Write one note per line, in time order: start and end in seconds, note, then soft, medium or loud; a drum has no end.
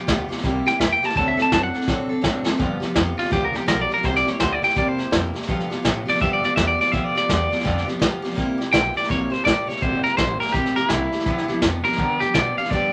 0.00 0.27 G5 loud
0.07 0.29 D2 medium
0.07 0.30 F3 medium
0.07 0.30 B3 medium
0.07 0.29 F4 medium
0.07 0.27 G4 medium
0.07 kick medium
0.07 snare loud
0.07 hi-hat pedal medium
0.29 0.43 F3 medium
0.29 0.44 B3 medium
0.29 0.44 F4 medium
0.29 0.43 G4 medium
0.29 muted upright bass stroke medium
0.29 snare soft
0.37 snare soft
0.43 0.65 C2 medium
0.43 0.66 C3 medium
0.43 0.66 G3 medium
0.43 0.66 A#3 medium
0.43 0.67 E4 loud
0.43 0.65 G4 loud
0.43 kick loud
0.43 snare soft
0.66 0.80 A#3 soft
0.66 0.80 E4 medium
0.66 0.79 G4 medium
0.66 0.79 G5 loud
0.66 snare soft
0.79 1.01 E2 loud
0.79 1.02 G3 medium
0.79 1.03 A#3 medium
0.79 1.03 E4 medium
0.79 1.01 G4 medium
0.79 0.91 E5 medium
0.79 kick medium
0.79 snare loud
0.79 hi-hat pedal medium
0.93 1.05 G5 loud
1.01 1.17 E4 soft
1.01 1.16 G4 medium
1.01 1.16 A5 medium
1.01 muted upright bass stroke soft
1.01 snare soft
1.06 1.16 A#3 soft
1.06 snare soft
1.16 1.37 D2 medium
1.16 1.38 D3 medium
1.16 1.39 F#3 medium
1.16 1.39 C4 medium
1.16 1.38 D4 medium
1.16 1.36 A4 medium
1.16 1.28 A5 medium
1.16 kick loud
1.16 snare soft
1.28 1.39 E5 medium
1.37 1.50 C4 soft
1.37 1.51 D4 soft
1.37 1.51 A4 medium
1.37 muted upright bass stroke medium
1.37 snare soft
1.42 1.52 A5 medium
1.50 1.73 F#2 medium
1.50 1.74 F#3 medium
1.50 1.74 C4 medium
1.50 1.74 D4 medium
1.50 1.73 A4 medium
1.50 1.63 A5 medium
1.50 kick medium
1.50 snare loud
1.50 hi-hat pedal medium
1.63 1.99 F#5 loud
1.74 1.87 C4 soft
1.74 1.88 D4 medium
1.74 1.88 A4 medium
1.74 muted upright bass stroke medium
1.74 snare soft
1.81 snare soft
1.88 2.09 A2 medium
1.88 2.10 D3 medium
1.88 2.11 F#3 medium
1.88 2.11 C4 medium
1.88 2.10 D4 medium
1.88 2.08 A4 medium
1.88 kick loud
1.88 snare medium
2.09 2.21 C4 soft
2.09 2.23 D4 medium
2.09 2.23 A4 medium
2.09 muted upright bass stroke soft
2.21 2.46 G#2 loud
2.21 2.45 F#3 medium
2.21 2.46 C4 medium
2.21 2.45 D4 medium
2.21 2.43 A4 medium
2.21 kick medium
2.21 snare medium
2.21 hi-hat pedal medium
2.44 2.59 C4 medium
2.44 2.60 D4 medium
2.44 2.59 A4 medium
2.44 muted upright bass stroke medium
2.44 snare medium
2.58 2.82 G2 medium
2.58 2.82 G2 loud
2.58 2.82 D3 medium
2.58 2.82 F3 medium
2.58 2.81 B3 loud
2.58 2.81 F4 medium
2.58 2.79 G4 medium
2.58 kick loud
2.58 snare soft
2.80 2.93 F3 medium
2.80 2.94 B3 medium
2.80 2.96 F4 medium
2.80 2.95 G4 medium
2.80 muted upright bass stroke medium
2.80 snare soft
2.94 3.18 F2 medium
2.94 3.18 F3 medium
2.94 3.18 B3 medium
2.94 3.18 F4 medium
2.94 kick medium
2.94 snare loud
2.94 hi-hat pedal medium
2.98 3.16 G4 medium
3.17 3.31 B3 soft
3.17 3.31 F4 medium
3.17 3.31 G4 medium
3.17 muted upright bass stroke medium
3.17 snare soft
3.21 3.31 F3 soft
3.21 snare soft
3.31 3.54 D2 medium
3.31 3.54 G2 medium
3.31 3.54 D3 medium
3.31 3.55 F3 medium
3.31 3.55 B3 medium
3.31 3.53 F4 medium
3.31 3.44 G4 loud
3.31 3.52 G4 medium
3.31 kick loud
3.31 snare soft
3.45 3.56 A#4 medium
3.54 3.65 F3 medium
3.54 3.66 B3 medium
3.54 3.67 F4 medium
3.54 3.68 G4 medium
3.54 3.68 G4 loud
3.54 muted upright bass stroke medium
3.54 snare soft
3.66 3.90 B1 loud
3.66 3.90 F3 medium
3.66 3.90 B3 medium
3.66 3.89 F4 medium
3.66 3.87 G4 medium
3.66 3.80 A#4 medium
3.66 kick medium
3.66 snare loud
3.66 hi-hat pedal medium
3.81 3.93 D5 medium
3.89 4.03 F3 soft
3.89 4.04 B3 soft
3.89 4.04 F4 medium
3.89 4.03 G4 medium
3.89 snare soft
3.94 4.05 A#4 medium
3.94 snare soft
4.03 4.26 C2 medium
4.03 4.26 C3 medium
4.03 4.27 G3 medium
4.03 4.27 A#3 medium
4.03 4.26 E4 medium
4.03 4.24 G4 medium
4.03 4.16 C5 loud
4.03 kick loud
4.03 snare soft
4.16 4.30 D5 loud
4.16 snare soft
4.25 4.39 A#3 soft
4.25 4.40 E4 medium
4.25 4.40 G4 medium
4.25 muted upright bass stroke medium
4.25 snare soft
4.30 4.40 C#5 loud
4.39 4.62 D2 loud
4.39 4.62 G3 medium
4.39 4.63 A#3 medium
4.39 4.62 E4 medium
4.39 4.52 C5 medium
4.39 kick medium
4.39 snare loud
4.39 hi-hat pedal medium
4.43 4.61 G4 medium
4.52 4.64 D5 medium
4.62 4.75 A#3 soft
4.62 4.76 E4 medium
4.62 4.76 G4 medium
4.62 4.76 G5 medium
4.62 muted upright bass stroke medium
4.62 snare soft
4.69 snare soft
4.76 4.99 C3 medium
4.76 4.99 G3 medium
4.76 4.99 A#3 medium
4.76 4.99 E4 medium
4.76 4.97 G4 medium
4.76 4.88 D5 medium
4.76 kick loud
4.76 snare soft
4.88 5.23 C5 loud
4.98 5.12 A#3 soft
4.98 5.12 E4 medium
4.98 5.12 G4 medium
4.98 muted upright bass stroke soft
4.98 snare soft
5.11 5.35 F2 medium
5.11 5.34 G3 medium
5.11 5.35 A#3 medium
5.11 5.34 E4 medium
5.11 5.32 G4 medium
5.11 kick medium
5.11 snare loud
5.11 hi-hat pedal loud
5.34 5.49 A#3 soft
5.34 5.49 E4 medium
5.34 5.48 G4 soft
5.34 snare soft
5.42 snare soft
5.48 5.71 G2 loud
5.48 5.71 D3 medium
5.48 5.71 F3 loud
5.48 5.71 B3 loud
5.48 5.70 F4 medium
5.48 5.69 G4 loud
5.48 kick loud
5.48 snare soft
5.60 snare soft
5.70 5.82 F3 medium
5.70 5.83 B3 medium
5.70 5.84 F4 medium
5.70 5.84 G4 medium
5.70 muted upright bass stroke soft
5.70 snare soft
5.83 6.07 A2 loud
5.83 6.06 F3 medium
5.83 6.07 B3 medium
5.83 6.06 F4 medium
5.83 6.04 G4 medium
5.83 kick medium
5.83 snare loud
5.83 hi-hat pedal loud
6.05 6.20 F3 soft
6.05 6.21 B3 medium
6.05 6.21 F4 medium
6.05 6.20 G4 medium
6.05 muted upright bass stroke medium
6.05 snare soft
6.10 6.21 D5 loud
6.15 snare soft
6.20 6.43 G2 medium
6.20 6.43 D3 medium
6.20 6.44 F3 medium
6.20 6.44 B3 medium
6.20 6.43 F4 medium
6.20 6.42 G4 loud
6.20 6.33 E5 loud
6.20 kick loud
6.20 snare soft
6.33 6.44 D5 medium
6.44 6.55 F3 medium
6.44 6.57 B3 medium
6.44 6.58 F4 medium
6.44 6.57 G4 medium
6.44 6.56 D5 loud
6.44 muted upright bass stroke medium
6.44 snare soft
6.56 6.79 E2 loud
6.56 6.79 F3 medium
6.56 6.80 B3 medium
6.56 6.79 F4 medium
6.56 6.77 G4 medium
6.56 6.67 E5 medium
6.56 kick medium
6.56 snare loud
6.56 hi-hat pedal medium
6.68 6.80 D5 medium
6.78 6.92 F3 soft
6.78 6.92 B3 soft
6.78 6.92 F4 medium
6.78 6.93 G4 medium
6.78 6.92 D5 medium
6.78 snare soft
6.87 snare soft
6.92 7.15 D2 loud
6.92 7.15 G2 medium
6.92 7.15 D3 medium
6.92 7.16 F3 medium
6.92 7.16 B3 medium
6.92 7.15 F4 medium
6.92 7.14 G4 medium
6.92 7.04 E5 loud
6.92 kick loud
6.92 snare soft
7.04 7.16 D5 medium
7.15 7.27 F3 soft
7.15 7.29 B3 medium
7.15 7.29 F4 medium
7.15 7.29 G4 medium
7.15 7.87 D5 loud
7.15 muted upright bass stroke soft
7.15 snare soft
7.28 7.51 E2 loud
7.28 7.51 F3 medium
7.28 7.51 B3 medium
7.28 7.50 F4 medium
7.28 7.49 G4 medium
7.28 kick medium
7.28 snare loud
7.28 hi-hat pedal loud
7.50 7.63 F3 soft
7.50 7.63 B3 soft
7.50 7.64 F4 medium
7.50 7.64 G4 medium
7.50 muted upright bass stroke medium
7.50 snare soft
7.59 7.87 G2 loud
7.59 snare soft
7.63 7.87 F2 medium
7.63 7.87 D3 medium
7.63 7.88 F3 medium
7.63 7.88 B3 loud
7.63 7.87 F4 loud
7.63 7.86 G4 loud
7.63 kick loud
7.63 snare soft
7.78 snare soft
7.87 7.98 F3 medium
7.87 8.00 B3 medium
7.87 8.01 F4 medium
7.87 8.01 G4 medium
7.87 snare soft
7.99 8.23 F3 medium
7.99 8.24 B3 medium
7.99 8.23 F4 medium
7.99 8.21 G4 medium
7.99 kick medium
7.99 snare loud
7.99 hi-hat pedal medium
8.22 8.36 F3 medium
8.22 8.36 B3 medium
8.22 8.37 F4 medium
8.22 8.37 G4 medium
8.22 muted upright bass stroke soft
8.22 snare soft
8.31 snare soft
8.35 8.59 C2 medium
8.35 8.59 C3 medium
8.35 8.59 G3 medium
8.35 8.60 A#3 medium
8.35 8.59 E4 medium
8.35 8.57 G4 loud
8.35 kick loud
8.35 snare soft
8.58 8.71 A#3 soft
8.58 8.72 E4 medium
8.58 8.72 G4 medium
8.58 muted upright bass stroke soft
8.58 snare soft
8.70 8.95 B1 loud
8.70 8.95 G3 medium
8.70 8.95 A#3 medium
8.70 8.95 E4 medium
8.70 8.93 G4 medium
8.70 8.95 G5 loud
8.70 kick medium
8.70 snare loud
8.70 hi-hat pedal medium
8.94 9.07 A#3 soft
8.94 9.09 E4 medium
8.94 9.09 G4 medium
8.94 9.10 D5 loud
8.94 snare soft
9.04 snare soft
9.08 9.32 A#1 medium
9.08 9.31 C3 medium
9.08 9.32 G3 medium
9.08 9.32 A#3 medium
9.08 9.30 E4 medium
9.08 9.29 G4 medium
9.08 9.32 C#5 loud
9.08 kick loud
9.08 snare soft
9.30 9.44 A#3 soft
9.30 9.45 E4 medium
9.30 9.45 G4 medium
9.30 9.45 C5 loud
9.30 muted upright bass stroke medium
9.30 snare soft
9.44 9.67 A1 loud
9.44 9.68 G3 medium
9.44 9.68 A#3 medium
9.44 9.68 E4 medium
9.44 9.66 G4 medium
9.44 9.68 D5 loud
9.44 kick medium
9.44 snare loud
9.44 hi-hat pedal medium
9.67 9.81 A#3 soft
9.67 9.81 E4 medium
9.67 9.81 G4 medium
9.67 9.82 C#5 loud
9.67 muted upright bass stroke soft
9.67 snare soft
9.76 snare soft
9.81 10.04 G1 loud
9.81 10.04 C3 medium
9.81 10.05 G3 medium
9.81 10.05 A#3 medium
9.81 10.04 E4 medium
9.81 10.02 G4 loud
9.81 10.03 C5 loud
9.81 kick loud
9.81 snare soft
10.03 10.17 A#3 soft
10.03 10.18 E4 soft
10.03 10.17 G4 medium
10.03 10.17 A#4 loud
10.03 snare soft
10.17 10.40 A1 loud
10.17 10.40 G3 medium
10.17 10.41 A#3 medium
10.17 10.41 E4 medium
10.17 10.40 G4 medium
10.17 10.39 C5 loud
10.17 kick medium
10.17 snare loud
10.17 hi-hat pedal medium
10.40 10.54 A#3 soft
10.40 10.55 E4 medium
10.40 10.54 G4 medium
10.40 10.53 A#4 medium
10.40 muted upright bass stroke medium
10.40 snare soft
10.48 snare soft
10.52 10.77 C3 medium
10.52 10.77 G3 medium
10.52 10.77 A#3 medium
10.52 10.76 E4 medium
10.52 10.75 G4 loud
10.52 kick loud
10.52 snare soft
10.65 snare soft
10.76 10.89 A#3 soft
10.76 10.90 E4 medium
10.76 10.90 G4 medium
10.76 10.90 A#4 loud
10.76 snare soft
10.89 11.12 C2 loud
10.89 11.12 G3 medium
10.89 11.13 A#3 medium
10.89 11.60 E4 loud
10.89 11.13 E4 medium
10.89 11.11 G4 medium
10.89 kick medium
10.89 snare loud
10.89 hi-hat pedal medium
11.12 11.27 A#3 soft
11.12 11.27 E4 medium
11.12 11.26 G4 medium
11.12 snare soft
11.19 snare soft
11.26 11.49 G2 medium
11.26 11.47 G2 medium
11.26 11.49 D3 medium
11.26 11.49 F3 medium
11.26 11.49 B3 medium
11.26 11.48 D4 medium
11.26 11.47 G4 medium
11.26 kick loud
11.26 snare soft
11.38 snare soft
11.48 11.61 F3 medium
11.48 11.62 B3 medium
11.48 11.63 D4 medium
11.48 11.62 G4 medium
11.48 muted upright bass stroke soft
11.48 snare soft
11.62 11.84 F2 loud
11.62 11.85 F3 medium
11.62 11.85 B3 medium
11.62 11.85 D4 medium
11.62 11.83 G4 medium
11.62 kick loud
11.62 snare loud
11.62 hi-hat pedal medium
11.84 11.97 F3 soft
11.84 11.98 B3 soft
11.84 11.98 D4 medium
11.84 11.98 G4 medium
11.84 12.20 A#4 medium
11.84 snare soft
11.92 snare soft
11.97 12.21 G2 medium
11.97 12.21 D3 medium
11.97 12.21 F3 medium
11.97 12.21 B3 medium
11.97 12.21 D4 medium
11.97 12.20 G4 medium
11.97 kick loud
11.97 snare soft
12.20 12.33 B3 medium
12.20 12.35 D4 soft
12.20 12.34 G4 loud
12.20 12.35 G4 medium
12.20 muted upright bass stroke medium
12.20 snare soft
12.25 12.33 F3 soft
12.34 12.57 B2 loud
12.34 12.57 F3 medium
12.34 12.57 B3 medium
12.34 12.58 D4 medium
12.34 12.58 G4 medium
12.34 12.56 D5 loud
12.34 kick medium
12.34 snare loud
12.34 hi-hat pedal medium
12.58 12.71 F3 soft
12.58 12.72 B3 medium
12.58 12.72 D4 medium
12.58 12.72 G4 medium
12.58 12.70 F5 medium
12.58 muted upright bass stroke medium
12.58 snare soft
12.64 snare soft
12.70 12.93 G2 medium
12.70 12.93 G2 loud
12.70 12.93 D3 medium
12.70 12.93 F3 medium
12.70 12.93 B3 medium
12.70 12.93 D4 medium
12.70 12.92 G4 medium
12.70 12.93 D5 loud
12.70 kick loud
12.70 snare soft